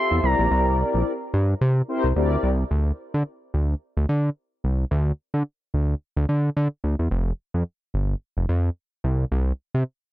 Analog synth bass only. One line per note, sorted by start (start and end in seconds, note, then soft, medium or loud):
0.11 0.21 E2 medium
0.23 0.35 C2 loud
0.39 0.48 A#1 medium
0.51 0.84 C2 loud
0.94 1.03 A#1 medium
1.34 1.54 G2 loud
1.61 1.82 C3 loud
2.04 2.13 C2 loud
2.16 2.37 D2 loud
2.43 2.64 C2 loud
2.71 2.92 D2 loud
3.14 3.23 D3 medium
3.54 3.75 D2 medium
3.97 4.06 D2 loud
4.09 4.30 D3 loud
4.64 4.85 C2 medium
4.91 5.12 D2 loud
5.34 5.43 D3 medium
5.74 5.95 D2 medium
6.17 6.26 D2 loud
6.29 6.50 D3 loud
6.57 6.68 D3 loud
6.84 6.96 D2 medium
6.99 7.08 E2 medium
7.11 7.32 F1 loud
7.54 7.63 F2 medium
7.94 8.15 G1 medium
8.37 8.46 F1 loud
8.49 8.70 F2 loud
9.04 9.25 C2 loud
9.32 9.52 C2 loud
9.74 9.84 C3 loud